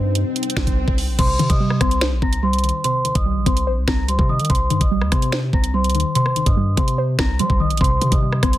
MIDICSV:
0, 0, Header, 1, 7, 480
1, 0, Start_track
1, 0, Key_signature, -3, "minor"
1, 0, Tempo, 413793
1, 1377, Time_signature, 4, 2, 24, 8
1, 9954, End_track
2, 0, Start_track
2, 0, Title_t, "Celesta"
2, 0, Program_c, 0, 8
2, 1376, Note_on_c, 0, 84, 102
2, 1385, Note_on_c, 0, 72, 84
2, 1715, Note_off_c, 0, 84, 0
2, 1720, Note_off_c, 0, 72, 0
2, 1735, Note_on_c, 0, 87, 73
2, 1744, Note_on_c, 0, 75, 65
2, 2075, Note_off_c, 0, 87, 0
2, 2079, Note_off_c, 0, 75, 0
2, 2097, Note_on_c, 0, 84, 88
2, 2105, Note_on_c, 0, 72, 64
2, 2295, Note_off_c, 0, 84, 0
2, 2300, Note_off_c, 0, 72, 0
2, 2577, Note_on_c, 0, 82, 74
2, 2586, Note_on_c, 0, 94, 51
2, 2774, Note_off_c, 0, 82, 0
2, 2780, Note_off_c, 0, 94, 0
2, 2818, Note_on_c, 0, 84, 87
2, 2827, Note_on_c, 0, 72, 64
2, 3268, Note_off_c, 0, 84, 0
2, 3273, Note_off_c, 0, 72, 0
2, 3298, Note_on_c, 0, 84, 106
2, 3307, Note_on_c, 0, 72, 90
2, 3636, Note_off_c, 0, 84, 0
2, 3641, Note_off_c, 0, 72, 0
2, 3657, Note_on_c, 0, 87, 72
2, 3666, Note_on_c, 0, 75, 56
2, 3996, Note_off_c, 0, 87, 0
2, 4000, Note_off_c, 0, 75, 0
2, 4019, Note_on_c, 0, 84, 80
2, 4027, Note_on_c, 0, 72, 66
2, 4216, Note_off_c, 0, 84, 0
2, 4221, Note_off_c, 0, 72, 0
2, 4497, Note_on_c, 0, 82, 81
2, 4505, Note_on_c, 0, 94, 61
2, 4694, Note_off_c, 0, 82, 0
2, 4700, Note_off_c, 0, 94, 0
2, 4737, Note_on_c, 0, 84, 84
2, 4747, Note_on_c, 0, 72, 69
2, 4935, Note_off_c, 0, 84, 0
2, 4941, Note_off_c, 0, 72, 0
2, 4980, Note_on_c, 0, 87, 81
2, 4989, Note_on_c, 0, 75, 63
2, 5176, Note_off_c, 0, 87, 0
2, 5182, Note_off_c, 0, 75, 0
2, 5217, Note_on_c, 0, 84, 119
2, 5226, Note_on_c, 0, 72, 83
2, 5555, Note_off_c, 0, 84, 0
2, 5560, Note_off_c, 0, 72, 0
2, 5578, Note_on_c, 0, 87, 73
2, 5587, Note_on_c, 0, 75, 65
2, 5916, Note_off_c, 0, 87, 0
2, 5921, Note_off_c, 0, 75, 0
2, 5937, Note_on_c, 0, 84, 82
2, 5946, Note_on_c, 0, 72, 62
2, 6135, Note_off_c, 0, 84, 0
2, 6140, Note_off_c, 0, 72, 0
2, 6419, Note_on_c, 0, 82, 72
2, 6429, Note_on_c, 0, 94, 55
2, 6616, Note_off_c, 0, 82, 0
2, 6622, Note_off_c, 0, 94, 0
2, 6659, Note_on_c, 0, 84, 85
2, 6668, Note_on_c, 0, 72, 70
2, 7109, Note_off_c, 0, 84, 0
2, 7114, Note_off_c, 0, 72, 0
2, 7138, Note_on_c, 0, 84, 112
2, 7147, Note_on_c, 0, 72, 89
2, 7476, Note_off_c, 0, 84, 0
2, 7481, Note_off_c, 0, 72, 0
2, 7497, Note_on_c, 0, 87, 73
2, 7507, Note_on_c, 0, 75, 62
2, 7836, Note_off_c, 0, 87, 0
2, 7841, Note_off_c, 0, 75, 0
2, 7857, Note_on_c, 0, 84, 83
2, 7865, Note_on_c, 0, 72, 65
2, 8054, Note_off_c, 0, 84, 0
2, 8060, Note_off_c, 0, 72, 0
2, 8337, Note_on_c, 0, 82, 84
2, 8347, Note_on_c, 0, 94, 68
2, 8535, Note_off_c, 0, 82, 0
2, 8541, Note_off_c, 0, 94, 0
2, 8578, Note_on_c, 0, 84, 87
2, 8588, Note_on_c, 0, 72, 69
2, 8775, Note_off_c, 0, 84, 0
2, 8781, Note_off_c, 0, 72, 0
2, 8817, Note_on_c, 0, 87, 80
2, 8826, Note_on_c, 0, 75, 64
2, 9015, Note_off_c, 0, 87, 0
2, 9020, Note_off_c, 0, 75, 0
2, 9057, Note_on_c, 0, 84, 102
2, 9066, Note_on_c, 0, 72, 88
2, 9395, Note_off_c, 0, 84, 0
2, 9400, Note_off_c, 0, 72, 0
2, 9417, Note_on_c, 0, 87, 73
2, 9427, Note_on_c, 0, 75, 63
2, 9755, Note_off_c, 0, 87, 0
2, 9760, Note_off_c, 0, 75, 0
2, 9776, Note_on_c, 0, 84, 84
2, 9785, Note_on_c, 0, 72, 61
2, 9954, Note_off_c, 0, 72, 0
2, 9954, Note_off_c, 0, 84, 0
2, 9954, End_track
3, 0, Start_track
3, 0, Title_t, "Analog synth pad"
3, 0, Program_c, 1, 89
3, 0, Note_on_c, 1, 48, 84
3, 0, Note_on_c, 1, 55, 78
3, 0, Note_on_c, 1, 63, 80
3, 0, Note_on_c, 1, 72, 97
3, 1331, Note_off_c, 1, 48, 0
3, 1338, Note_off_c, 1, 55, 0
3, 1338, Note_off_c, 1, 63, 0
3, 1338, Note_off_c, 1, 72, 0
3, 9056, Note_on_c, 1, 55, 81
3, 9056, Note_on_c, 1, 72, 98
3, 9057, Note_on_c, 1, 48, 89
3, 9058, Note_on_c, 1, 63, 78
3, 9954, Note_off_c, 1, 48, 0
3, 9954, Note_off_c, 1, 55, 0
3, 9954, Note_off_c, 1, 63, 0
3, 9954, Note_off_c, 1, 72, 0
3, 9954, End_track
4, 0, Start_track
4, 0, Title_t, "Synth pluck"
4, 0, Program_c, 2, 84
4, 1377, Note_on_c, 2, 48, 92
4, 1616, Note_on_c, 2, 51, 85
4, 1857, Note_on_c, 2, 55, 92
4, 2098, Note_on_c, 2, 60, 87
4, 2336, Note_on_c, 2, 72, 100
4, 2564, Note_off_c, 2, 60, 0
4, 2577, Note_off_c, 2, 48, 0
4, 2578, Note_on_c, 2, 60, 88
4, 2804, Note_off_c, 2, 55, 0
4, 2817, Note_off_c, 2, 51, 0
4, 2818, Note_on_c, 2, 55, 92
4, 3058, Note_on_c, 2, 51, 81
4, 3297, Note_on_c, 2, 48, 94
4, 3523, Note_off_c, 2, 51, 0
4, 3536, Note_on_c, 2, 51, 87
4, 3537, Note_off_c, 2, 72, 0
4, 3763, Note_off_c, 2, 55, 0
4, 3777, Note_on_c, 2, 55, 91
4, 3778, Note_off_c, 2, 60, 0
4, 4017, Note_on_c, 2, 60, 79
4, 4257, Note_on_c, 2, 72, 104
4, 4484, Note_off_c, 2, 60, 0
4, 4497, Note_off_c, 2, 48, 0
4, 4498, Note_on_c, 2, 60, 86
4, 4725, Note_off_c, 2, 55, 0
4, 4737, Note_off_c, 2, 51, 0
4, 4739, Note_on_c, 2, 55, 88
4, 4979, Note_on_c, 2, 51, 78
4, 5217, Note_off_c, 2, 60, 0
4, 5217, Note_off_c, 2, 72, 0
4, 5218, Note_off_c, 2, 51, 0
4, 5218, Note_off_c, 2, 55, 0
4, 5219, Note_on_c, 2, 48, 91
4, 5460, Note_on_c, 2, 51, 93
4, 5699, Note_on_c, 2, 55, 94
4, 5940, Note_on_c, 2, 60, 89
4, 6178, Note_on_c, 2, 72, 113
4, 6406, Note_off_c, 2, 60, 0
4, 6418, Note_off_c, 2, 48, 0
4, 6420, Note_on_c, 2, 60, 88
4, 6645, Note_off_c, 2, 55, 0
4, 6658, Note_off_c, 2, 51, 0
4, 6659, Note_on_c, 2, 55, 89
4, 6899, Note_on_c, 2, 51, 90
4, 7139, Note_on_c, 2, 48, 98
4, 7365, Note_off_c, 2, 51, 0
4, 7378, Note_off_c, 2, 72, 0
4, 7379, Note_on_c, 2, 51, 83
4, 7605, Note_off_c, 2, 55, 0
4, 7618, Note_off_c, 2, 60, 0
4, 7619, Note_on_c, 2, 55, 87
4, 7858, Note_on_c, 2, 60, 97
4, 8099, Note_on_c, 2, 72, 106
4, 8325, Note_off_c, 2, 60, 0
4, 8338, Note_off_c, 2, 48, 0
4, 8339, Note_on_c, 2, 60, 89
4, 8565, Note_off_c, 2, 55, 0
4, 8578, Note_off_c, 2, 51, 0
4, 8579, Note_on_c, 2, 55, 87
4, 8818, Note_on_c, 2, 51, 83
4, 9058, Note_off_c, 2, 51, 0
4, 9058, Note_off_c, 2, 55, 0
4, 9058, Note_off_c, 2, 60, 0
4, 9058, Note_off_c, 2, 72, 0
4, 9059, Note_on_c, 2, 48, 94
4, 9298, Note_on_c, 2, 51, 87
4, 9539, Note_on_c, 2, 55, 91
4, 9778, Note_on_c, 2, 60, 84
4, 9954, Note_off_c, 2, 48, 0
4, 9954, Note_off_c, 2, 51, 0
4, 9954, Note_off_c, 2, 55, 0
4, 9954, Note_off_c, 2, 60, 0
4, 9954, End_track
5, 0, Start_track
5, 0, Title_t, "808-style bass"
5, 0, Program_c, 3, 38
5, 0, Note_on_c, 3, 43, 101
5, 278, Note_off_c, 3, 43, 0
5, 656, Note_on_c, 3, 36, 105
5, 772, Note_off_c, 3, 36, 0
5, 777, Note_on_c, 3, 36, 99
5, 1007, Note_off_c, 3, 36, 0
5, 1017, Note_on_c, 3, 36, 113
5, 1256, Note_on_c, 3, 34, 95
5, 1274, Note_off_c, 3, 36, 0
5, 1371, Note_off_c, 3, 34, 0
5, 1377, Note_on_c, 3, 36, 110
5, 1608, Note_off_c, 3, 36, 0
5, 1617, Note_on_c, 3, 48, 102
5, 1732, Note_off_c, 3, 48, 0
5, 1737, Note_on_c, 3, 48, 104
5, 2083, Note_off_c, 3, 48, 0
5, 2097, Note_on_c, 3, 36, 108
5, 2457, Note_on_c, 3, 34, 101
5, 2474, Note_off_c, 3, 36, 0
5, 2571, Note_off_c, 3, 34, 0
5, 2577, Note_on_c, 3, 36, 103
5, 3153, Note_off_c, 3, 36, 0
5, 3658, Note_on_c, 3, 36, 109
5, 3897, Note_on_c, 3, 34, 99
5, 3915, Note_off_c, 3, 36, 0
5, 4011, Note_off_c, 3, 34, 0
5, 4017, Note_on_c, 3, 36, 109
5, 4257, Note_on_c, 3, 34, 104
5, 4275, Note_off_c, 3, 36, 0
5, 4376, Note_on_c, 3, 36, 102
5, 4394, Note_off_c, 3, 34, 0
5, 4491, Note_off_c, 3, 36, 0
5, 4496, Note_on_c, 3, 36, 109
5, 4738, Note_on_c, 3, 37, 102
5, 4755, Note_off_c, 3, 36, 0
5, 4851, Note_off_c, 3, 37, 0
5, 4858, Note_on_c, 3, 48, 111
5, 5097, Note_on_c, 3, 51, 97
5, 5115, Note_off_c, 3, 48, 0
5, 5211, Note_off_c, 3, 51, 0
5, 5218, Note_on_c, 3, 36, 111
5, 5448, Note_off_c, 3, 36, 0
5, 5457, Note_on_c, 3, 43, 101
5, 5572, Note_off_c, 3, 43, 0
5, 5578, Note_on_c, 3, 34, 108
5, 5818, Note_on_c, 3, 39, 105
5, 5835, Note_off_c, 3, 34, 0
5, 5932, Note_off_c, 3, 39, 0
5, 5938, Note_on_c, 3, 48, 105
5, 6398, Note_off_c, 3, 48, 0
5, 6417, Note_on_c, 3, 36, 110
5, 6897, Note_on_c, 3, 39, 100
5, 6915, Note_off_c, 3, 36, 0
5, 7011, Note_off_c, 3, 39, 0
5, 7498, Note_on_c, 3, 43, 108
5, 7843, Note_off_c, 3, 43, 0
5, 7857, Note_on_c, 3, 48, 109
5, 8318, Note_off_c, 3, 48, 0
5, 8336, Note_on_c, 3, 36, 108
5, 8578, Note_on_c, 3, 55, 101
5, 8595, Note_off_c, 3, 36, 0
5, 8691, Note_off_c, 3, 55, 0
5, 8697, Note_on_c, 3, 36, 108
5, 8938, Note_on_c, 3, 34, 101
5, 8955, Note_off_c, 3, 36, 0
5, 9051, Note_off_c, 3, 34, 0
5, 9058, Note_on_c, 3, 36, 108
5, 9288, Note_off_c, 3, 36, 0
5, 9298, Note_on_c, 3, 48, 103
5, 9410, Note_off_c, 3, 48, 0
5, 9417, Note_on_c, 3, 48, 103
5, 9762, Note_off_c, 3, 48, 0
5, 9777, Note_on_c, 3, 36, 110
5, 9954, Note_off_c, 3, 36, 0
5, 9954, End_track
6, 0, Start_track
6, 0, Title_t, "Swell"
6, 0, Program_c, 4, 103
6, 0, Note_on_c, 4, 60, 84
6, 1377, Note_off_c, 4, 60, 0
6, 9954, End_track
7, 0, Start_track
7, 0, Title_t, "Drums"
7, 177, Note_on_c, 9, 42, 84
7, 293, Note_off_c, 9, 42, 0
7, 416, Note_on_c, 9, 42, 70
7, 497, Note_off_c, 9, 42, 0
7, 497, Note_on_c, 9, 42, 68
7, 577, Note_off_c, 9, 42, 0
7, 577, Note_on_c, 9, 42, 65
7, 656, Note_on_c, 9, 26, 98
7, 656, Note_on_c, 9, 36, 91
7, 658, Note_on_c, 9, 38, 123
7, 693, Note_off_c, 9, 42, 0
7, 772, Note_off_c, 9, 26, 0
7, 772, Note_off_c, 9, 36, 0
7, 774, Note_off_c, 9, 38, 0
7, 777, Note_on_c, 9, 36, 87
7, 778, Note_on_c, 9, 42, 83
7, 893, Note_off_c, 9, 36, 0
7, 894, Note_off_c, 9, 42, 0
7, 1017, Note_on_c, 9, 36, 91
7, 1133, Note_off_c, 9, 36, 0
7, 1137, Note_on_c, 9, 46, 61
7, 1253, Note_off_c, 9, 46, 0
7, 1377, Note_on_c, 9, 36, 127
7, 1377, Note_on_c, 9, 42, 87
7, 1377, Note_on_c, 9, 49, 103
7, 1493, Note_off_c, 9, 36, 0
7, 1493, Note_off_c, 9, 42, 0
7, 1493, Note_off_c, 9, 49, 0
7, 1617, Note_on_c, 9, 42, 81
7, 1733, Note_off_c, 9, 42, 0
7, 1737, Note_on_c, 9, 36, 98
7, 1737, Note_on_c, 9, 42, 81
7, 1853, Note_off_c, 9, 36, 0
7, 1853, Note_off_c, 9, 42, 0
7, 1976, Note_on_c, 9, 37, 72
7, 2092, Note_off_c, 9, 37, 0
7, 2097, Note_on_c, 9, 36, 111
7, 2097, Note_on_c, 9, 37, 105
7, 2097, Note_on_c, 9, 42, 88
7, 2213, Note_off_c, 9, 36, 0
7, 2213, Note_off_c, 9, 37, 0
7, 2213, Note_off_c, 9, 42, 0
7, 2218, Note_on_c, 9, 42, 81
7, 2334, Note_off_c, 9, 42, 0
7, 2336, Note_on_c, 9, 26, 100
7, 2338, Note_on_c, 9, 38, 126
7, 2452, Note_off_c, 9, 26, 0
7, 2454, Note_off_c, 9, 38, 0
7, 2577, Note_on_c, 9, 36, 95
7, 2693, Note_off_c, 9, 36, 0
7, 2698, Note_on_c, 9, 42, 89
7, 2814, Note_off_c, 9, 42, 0
7, 2938, Note_on_c, 9, 42, 57
7, 2999, Note_off_c, 9, 42, 0
7, 2999, Note_on_c, 9, 42, 56
7, 3059, Note_off_c, 9, 42, 0
7, 3059, Note_on_c, 9, 42, 57
7, 3118, Note_off_c, 9, 42, 0
7, 3118, Note_on_c, 9, 42, 57
7, 3234, Note_off_c, 9, 42, 0
7, 3298, Note_on_c, 9, 42, 91
7, 3414, Note_off_c, 9, 42, 0
7, 3537, Note_on_c, 9, 42, 82
7, 3653, Note_off_c, 9, 42, 0
7, 3657, Note_on_c, 9, 42, 80
7, 3658, Note_on_c, 9, 36, 103
7, 3773, Note_off_c, 9, 42, 0
7, 3774, Note_off_c, 9, 36, 0
7, 4017, Note_on_c, 9, 36, 107
7, 4017, Note_on_c, 9, 42, 88
7, 4133, Note_off_c, 9, 36, 0
7, 4133, Note_off_c, 9, 42, 0
7, 4138, Note_on_c, 9, 42, 80
7, 4254, Note_off_c, 9, 42, 0
7, 4496, Note_on_c, 9, 26, 98
7, 4497, Note_on_c, 9, 36, 98
7, 4498, Note_on_c, 9, 37, 101
7, 4498, Note_on_c, 9, 38, 127
7, 4612, Note_off_c, 9, 26, 0
7, 4613, Note_off_c, 9, 36, 0
7, 4614, Note_off_c, 9, 37, 0
7, 4614, Note_off_c, 9, 38, 0
7, 4738, Note_on_c, 9, 42, 88
7, 4854, Note_off_c, 9, 42, 0
7, 4858, Note_on_c, 9, 36, 98
7, 4974, Note_off_c, 9, 36, 0
7, 5098, Note_on_c, 9, 42, 54
7, 5159, Note_off_c, 9, 42, 0
7, 5159, Note_on_c, 9, 42, 67
7, 5218, Note_off_c, 9, 42, 0
7, 5218, Note_on_c, 9, 36, 122
7, 5218, Note_on_c, 9, 42, 77
7, 5277, Note_off_c, 9, 42, 0
7, 5277, Note_on_c, 9, 42, 89
7, 5334, Note_off_c, 9, 36, 0
7, 5393, Note_off_c, 9, 42, 0
7, 5457, Note_on_c, 9, 42, 79
7, 5573, Note_off_c, 9, 42, 0
7, 5578, Note_on_c, 9, 36, 102
7, 5578, Note_on_c, 9, 42, 80
7, 5694, Note_off_c, 9, 36, 0
7, 5694, Note_off_c, 9, 42, 0
7, 5817, Note_on_c, 9, 37, 72
7, 5933, Note_off_c, 9, 37, 0
7, 5937, Note_on_c, 9, 37, 106
7, 5938, Note_on_c, 9, 36, 113
7, 5938, Note_on_c, 9, 42, 91
7, 6053, Note_off_c, 9, 37, 0
7, 6054, Note_off_c, 9, 36, 0
7, 6054, Note_off_c, 9, 42, 0
7, 6059, Note_on_c, 9, 42, 79
7, 6175, Note_off_c, 9, 42, 0
7, 6176, Note_on_c, 9, 26, 102
7, 6178, Note_on_c, 9, 38, 126
7, 6292, Note_off_c, 9, 26, 0
7, 6294, Note_off_c, 9, 38, 0
7, 6417, Note_on_c, 9, 36, 96
7, 6533, Note_off_c, 9, 36, 0
7, 6539, Note_on_c, 9, 42, 90
7, 6655, Note_off_c, 9, 42, 0
7, 6779, Note_on_c, 9, 42, 58
7, 6839, Note_off_c, 9, 42, 0
7, 6839, Note_on_c, 9, 42, 54
7, 6898, Note_off_c, 9, 42, 0
7, 6898, Note_on_c, 9, 42, 57
7, 6959, Note_off_c, 9, 42, 0
7, 6959, Note_on_c, 9, 42, 57
7, 7075, Note_off_c, 9, 42, 0
7, 7139, Note_on_c, 9, 42, 90
7, 7255, Note_off_c, 9, 42, 0
7, 7259, Note_on_c, 9, 37, 75
7, 7375, Note_off_c, 9, 37, 0
7, 7379, Note_on_c, 9, 42, 83
7, 7495, Note_off_c, 9, 42, 0
7, 7498, Note_on_c, 9, 36, 103
7, 7498, Note_on_c, 9, 42, 80
7, 7614, Note_off_c, 9, 36, 0
7, 7614, Note_off_c, 9, 42, 0
7, 7857, Note_on_c, 9, 36, 112
7, 7858, Note_on_c, 9, 42, 86
7, 7973, Note_off_c, 9, 36, 0
7, 7974, Note_off_c, 9, 42, 0
7, 7978, Note_on_c, 9, 42, 79
7, 8094, Note_off_c, 9, 42, 0
7, 8337, Note_on_c, 9, 26, 105
7, 8337, Note_on_c, 9, 36, 92
7, 8339, Note_on_c, 9, 37, 104
7, 8339, Note_on_c, 9, 38, 121
7, 8453, Note_off_c, 9, 26, 0
7, 8453, Note_off_c, 9, 36, 0
7, 8455, Note_off_c, 9, 37, 0
7, 8455, Note_off_c, 9, 38, 0
7, 8577, Note_on_c, 9, 42, 90
7, 8693, Note_off_c, 9, 42, 0
7, 8697, Note_on_c, 9, 36, 97
7, 8813, Note_off_c, 9, 36, 0
7, 8937, Note_on_c, 9, 42, 53
7, 9018, Note_off_c, 9, 42, 0
7, 9018, Note_on_c, 9, 42, 73
7, 9058, Note_on_c, 9, 36, 126
7, 9098, Note_off_c, 9, 42, 0
7, 9098, Note_on_c, 9, 42, 86
7, 9174, Note_off_c, 9, 36, 0
7, 9214, Note_off_c, 9, 42, 0
7, 9297, Note_on_c, 9, 42, 81
7, 9413, Note_off_c, 9, 42, 0
7, 9417, Note_on_c, 9, 36, 99
7, 9417, Note_on_c, 9, 42, 80
7, 9533, Note_off_c, 9, 36, 0
7, 9533, Note_off_c, 9, 42, 0
7, 9657, Note_on_c, 9, 37, 71
7, 9773, Note_off_c, 9, 37, 0
7, 9776, Note_on_c, 9, 37, 110
7, 9777, Note_on_c, 9, 36, 107
7, 9777, Note_on_c, 9, 42, 86
7, 9892, Note_off_c, 9, 37, 0
7, 9893, Note_off_c, 9, 36, 0
7, 9893, Note_off_c, 9, 42, 0
7, 9896, Note_on_c, 9, 42, 81
7, 9954, Note_off_c, 9, 42, 0
7, 9954, End_track
0, 0, End_of_file